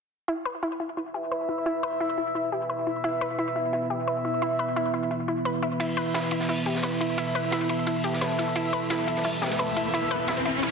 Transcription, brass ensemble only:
0, 0, Header, 1, 2, 480
1, 0, Start_track
1, 0, Tempo, 344828
1, 391, Time_signature, 4, 2, 24, 8
1, 14911, End_track
2, 0, Start_track
2, 0, Title_t, "Brass ensemble"
2, 0, Program_c, 0, 61
2, 1592, Note_on_c, 0, 64, 90
2, 1592, Note_on_c, 0, 71, 82
2, 1592, Note_on_c, 0, 76, 104
2, 3483, Note_off_c, 0, 64, 0
2, 3483, Note_off_c, 0, 71, 0
2, 3483, Note_off_c, 0, 76, 0
2, 3512, Note_on_c, 0, 64, 92
2, 3512, Note_on_c, 0, 71, 83
2, 3512, Note_on_c, 0, 76, 103
2, 5403, Note_off_c, 0, 64, 0
2, 5403, Note_off_c, 0, 71, 0
2, 5403, Note_off_c, 0, 76, 0
2, 5432, Note_on_c, 0, 64, 93
2, 5432, Note_on_c, 0, 71, 86
2, 5432, Note_on_c, 0, 76, 106
2, 7323, Note_off_c, 0, 64, 0
2, 7323, Note_off_c, 0, 71, 0
2, 7323, Note_off_c, 0, 76, 0
2, 7712, Note_on_c, 0, 64, 80
2, 7712, Note_on_c, 0, 71, 72
2, 7712, Note_on_c, 0, 76, 83
2, 9255, Note_off_c, 0, 64, 0
2, 9255, Note_off_c, 0, 71, 0
2, 9255, Note_off_c, 0, 76, 0
2, 9272, Note_on_c, 0, 64, 94
2, 9272, Note_on_c, 0, 71, 86
2, 9272, Note_on_c, 0, 76, 104
2, 11163, Note_off_c, 0, 64, 0
2, 11163, Note_off_c, 0, 71, 0
2, 11163, Note_off_c, 0, 76, 0
2, 11192, Note_on_c, 0, 64, 93
2, 11192, Note_on_c, 0, 71, 83
2, 11192, Note_on_c, 0, 76, 106
2, 13083, Note_off_c, 0, 64, 0
2, 13083, Note_off_c, 0, 71, 0
2, 13083, Note_off_c, 0, 76, 0
2, 13112, Note_on_c, 0, 64, 95
2, 13112, Note_on_c, 0, 71, 89
2, 13112, Note_on_c, 0, 76, 105
2, 14911, Note_off_c, 0, 64, 0
2, 14911, Note_off_c, 0, 71, 0
2, 14911, Note_off_c, 0, 76, 0
2, 14911, End_track
0, 0, End_of_file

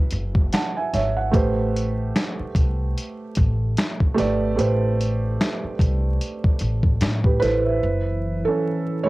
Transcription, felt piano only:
0, 0, Header, 1, 2, 480
1, 0, Start_track
1, 0, Tempo, 810811
1, 790, Time_signature, 4, 2, 24, 8
1, 5383, End_track
2, 0, Start_track
2, 0, Title_t, "Felt piano"
2, 0, Program_c, 0, 0
2, 0, Control_c, 0, 64, 127
2, 0, Note_on_c, 0, 54, 90
2, 0, Note_on_c, 0, 64, 84
2, 0, Note_on_c, 0, 68, 75
2, 0, Note_on_c, 0, 71, 94
2, 312, Note_on_c, 0, 81, 63
2, 315, Note_on_c, 0, 78, 56
2, 445, Note_off_c, 0, 81, 0
2, 447, Note_off_c, 0, 78, 0
2, 454, Note_on_c, 0, 80, 68
2, 458, Note_on_c, 0, 76, 59
2, 547, Note_off_c, 0, 80, 0
2, 548, Note_off_c, 0, 76, 0
2, 559, Note_on_c, 0, 76, 80
2, 560, Note_on_c, 0, 73, 61
2, 689, Note_off_c, 0, 76, 0
2, 690, Note_off_c, 0, 73, 0
2, 690, Note_on_c, 0, 78, 63
2, 778, Note_on_c, 0, 57, 82
2, 787, Note_on_c, 0, 67, 80
2, 794, Note_off_c, 0, 71, 0
2, 794, Note_on_c, 0, 71, 71
2, 799, Control_c, 0, 64, 0
2, 800, Note_off_c, 0, 64, 0
2, 802, Note_off_c, 0, 54, 0
2, 804, Note_on_c, 0, 72, 83
2, 805, Note_off_c, 0, 68, 0
2, 886, Control_c, 0, 64, 127
2, 919, Note_off_c, 0, 78, 0
2, 1457, Note_off_c, 0, 57, 0
2, 1462, Note_off_c, 0, 67, 0
2, 1465, Note_off_c, 0, 71, 0
2, 1470, Note_off_c, 0, 72, 0
2, 2452, Note_on_c, 0, 57, 91
2, 2461, Note_on_c, 0, 67, 83
2, 2473, Note_on_c, 0, 71, 77
2, 2482, Note_on_c, 0, 74, 106
2, 2640, Note_off_c, 0, 57, 0
2, 2645, Note_off_c, 0, 67, 0
2, 2650, Note_off_c, 0, 71, 0
2, 2655, Note_off_c, 0, 74, 0
2, 2698, Note_on_c, 0, 57, 83
2, 2707, Note_on_c, 0, 67, 72
2, 2714, Note_on_c, 0, 71, 78
2, 2725, Note_on_c, 0, 72, 89
2, 3377, Note_off_c, 0, 57, 0
2, 3382, Note_off_c, 0, 67, 0
2, 3385, Note_off_c, 0, 71, 0
2, 3391, Note_off_c, 0, 72, 0
2, 4292, Note_on_c, 0, 71, 62
2, 4297, Note_on_c, 0, 67, 54
2, 4370, Note_off_c, 0, 71, 0
2, 4379, Note_on_c, 0, 71, 108
2, 4388, Note_off_c, 0, 67, 0
2, 4389, Note_on_c, 0, 72, 76
2, 4391, Note_on_c, 0, 69, 65
2, 4394, Note_on_c, 0, 64, 74
2, 4524, Note_off_c, 0, 72, 0
2, 4525, Note_off_c, 0, 69, 0
2, 4532, Note_on_c, 0, 76, 61
2, 4534, Note_on_c, 0, 72, 50
2, 4637, Control_c, 0, 64, 0
2, 4723, Control_c, 0, 64, 127
2, 4760, Note_off_c, 0, 76, 0
2, 4761, Note_off_c, 0, 72, 0
2, 4983, Note_off_c, 0, 71, 0
2, 4990, Note_off_c, 0, 64, 0
2, 5002, Note_on_c, 0, 69, 85
2, 5019, Note_on_c, 0, 61, 60
2, 5330, Note_off_c, 0, 61, 0
2, 5349, Note_on_c, 0, 73, 96
2, 5354, Note_on_c, 0, 52, 56
2, 5354, Note_on_c, 0, 56, 55
2, 5356, Note_off_c, 0, 69, 0
2, 5360, Note_on_c, 0, 57, 62
2, 5363, Note_on_c, 0, 64, 77
2, 5383, Note_off_c, 0, 52, 0
2, 5383, Note_off_c, 0, 56, 0
2, 5383, Note_off_c, 0, 57, 0
2, 5383, Note_off_c, 0, 64, 0
2, 5383, Note_off_c, 0, 73, 0
2, 5383, End_track
0, 0, End_of_file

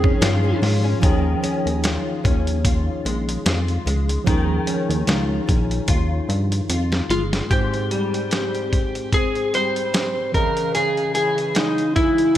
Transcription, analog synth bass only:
0, 0, Header, 1, 2, 480
1, 0, Start_track
1, 0, Tempo, 809717
1, 609, Time_signature, 4, 2, 24, 8
1, 7336, End_track
2, 0, Start_track
2, 0, Title_t, "Analog synth bass"
2, 0, Program_c, 0, 38
2, 0, Note_on_c, 0, 41, 92
2, 80, Note_off_c, 0, 41, 0
2, 126, Note_on_c, 0, 43, 92
2, 320, Note_off_c, 0, 43, 0
2, 369, Note_on_c, 0, 44, 98
2, 561, Note_off_c, 0, 44, 0
2, 610, Note_on_c, 0, 39, 92
2, 802, Note_off_c, 0, 39, 0
2, 983, Note_on_c, 0, 39, 94
2, 1174, Note_off_c, 0, 39, 0
2, 1333, Note_on_c, 0, 39, 79
2, 1716, Note_off_c, 0, 39, 0
2, 1811, Note_on_c, 0, 34, 110
2, 2002, Note_off_c, 0, 34, 0
2, 2051, Note_on_c, 0, 41, 93
2, 2242, Note_off_c, 0, 41, 0
2, 2289, Note_on_c, 0, 37, 88
2, 2481, Note_off_c, 0, 37, 0
2, 2532, Note_on_c, 0, 39, 92
2, 2723, Note_off_c, 0, 39, 0
2, 2899, Note_on_c, 0, 39, 99
2, 2987, Note_off_c, 0, 39, 0
2, 3008, Note_on_c, 0, 37, 81
2, 3201, Note_off_c, 0, 37, 0
2, 3252, Note_on_c, 0, 34, 81
2, 3443, Note_off_c, 0, 34, 0
2, 3488, Note_on_c, 0, 39, 79
2, 3681, Note_off_c, 0, 39, 0
2, 3727, Note_on_c, 0, 43, 90
2, 3920, Note_off_c, 0, 43, 0
2, 3967, Note_on_c, 0, 41, 91
2, 4160, Note_off_c, 0, 41, 0
2, 4205, Note_on_c, 0, 31, 77
2, 4399, Note_off_c, 0, 31, 0
2, 7336, End_track
0, 0, End_of_file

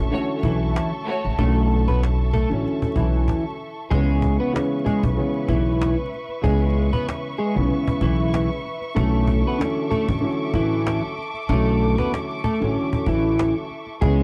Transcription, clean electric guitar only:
0, 0, Header, 1, 2, 480
1, 0, Start_track
1, 0, Tempo, 631579
1, 1053, Time_signature, 4, 2, 24, 8
1, 10818, End_track
2, 0, Start_track
2, 0, Title_t, "Clean electric guitar"
2, 0, Program_c, 0, 27
2, 339, Note_on_c, 0, 64, 75
2, 345, Note_on_c, 0, 52, 68
2, 688, Note_off_c, 0, 64, 0
2, 691, Note_off_c, 0, 52, 0
2, 1054, Note_on_c, 0, 69, 108
2, 1060, Note_on_c, 0, 57, 84
2, 1406, Note_off_c, 0, 69, 0
2, 1409, Note_off_c, 0, 57, 0
2, 1428, Note_on_c, 0, 71, 79
2, 1434, Note_on_c, 0, 59, 61
2, 1523, Note_off_c, 0, 71, 0
2, 1526, Note_off_c, 0, 59, 0
2, 1773, Note_on_c, 0, 69, 84
2, 1779, Note_on_c, 0, 57, 64
2, 1894, Note_off_c, 0, 69, 0
2, 1897, Note_off_c, 0, 57, 0
2, 2258, Note_on_c, 0, 64, 78
2, 2264, Note_on_c, 0, 52, 61
2, 2608, Note_off_c, 0, 64, 0
2, 2611, Note_off_c, 0, 52, 0
2, 2967, Note_on_c, 0, 68, 108
2, 2973, Note_on_c, 0, 56, 85
2, 3322, Note_off_c, 0, 68, 0
2, 3325, Note_off_c, 0, 56, 0
2, 3344, Note_on_c, 0, 71, 79
2, 3349, Note_on_c, 0, 59, 61
2, 3440, Note_off_c, 0, 71, 0
2, 3443, Note_off_c, 0, 59, 0
2, 3692, Note_on_c, 0, 68, 85
2, 3699, Note_on_c, 0, 56, 67
2, 3814, Note_off_c, 0, 68, 0
2, 3817, Note_off_c, 0, 56, 0
2, 4174, Note_on_c, 0, 64, 82
2, 4180, Note_on_c, 0, 52, 63
2, 4525, Note_off_c, 0, 64, 0
2, 4529, Note_off_c, 0, 52, 0
2, 4891, Note_on_c, 0, 68, 103
2, 4898, Note_on_c, 0, 56, 84
2, 5244, Note_off_c, 0, 68, 0
2, 5248, Note_off_c, 0, 56, 0
2, 5266, Note_on_c, 0, 71, 80
2, 5272, Note_on_c, 0, 59, 62
2, 5361, Note_off_c, 0, 71, 0
2, 5365, Note_off_c, 0, 59, 0
2, 5611, Note_on_c, 0, 68, 81
2, 5617, Note_on_c, 0, 56, 66
2, 5733, Note_off_c, 0, 68, 0
2, 5736, Note_off_c, 0, 56, 0
2, 6097, Note_on_c, 0, 64, 79
2, 6103, Note_on_c, 0, 52, 65
2, 6447, Note_off_c, 0, 64, 0
2, 6450, Note_off_c, 0, 52, 0
2, 6809, Note_on_c, 0, 69, 102
2, 6815, Note_on_c, 0, 57, 85
2, 7163, Note_off_c, 0, 69, 0
2, 7166, Note_off_c, 0, 57, 0
2, 7199, Note_on_c, 0, 71, 84
2, 7204, Note_on_c, 0, 59, 65
2, 7289, Note_off_c, 0, 71, 0
2, 7292, Note_off_c, 0, 59, 0
2, 7528, Note_on_c, 0, 69, 85
2, 7534, Note_on_c, 0, 57, 63
2, 7651, Note_off_c, 0, 69, 0
2, 7654, Note_off_c, 0, 57, 0
2, 8018, Note_on_c, 0, 64, 81
2, 8025, Note_on_c, 0, 52, 68
2, 8368, Note_off_c, 0, 64, 0
2, 8371, Note_off_c, 0, 52, 0
2, 8736, Note_on_c, 0, 69, 112
2, 8741, Note_on_c, 0, 57, 91
2, 9086, Note_off_c, 0, 69, 0
2, 9089, Note_off_c, 0, 57, 0
2, 9110, Note_on_c, 0, 71, 82
2, 9116, Note_on_c, 0, 59, 64
2, 9204, Note_off_c, 0, 71, 0
2, 9207, Note_off_c, 0, 59, 0
2, 9454, Note_on_c, 0, 69, 86
2, 9461, Note_on_c, 0, 57, 66
2, 9575, Note_off_c, 0, 69, 0
2, 9578, Note_off_c, 0, 57, 0
2, 9940, Note_on_c, 0, 64, 81
2, 9947, Note_on_c, 0, 52, 63
2, 10289, Note_off_c, 0, 64, 0
2, 10292, Note_off_c, 0, 52, 0
2, 10649, Note_on_c, 0, 68, 109
2, 10656, Note_on_c, 0, 56, 86
2, 10818, Note_off_c, 0, 56, 0
2, 10818, Note_off_c, 0, 68, 0
2, 10818, End_track
0, 0, End_of_file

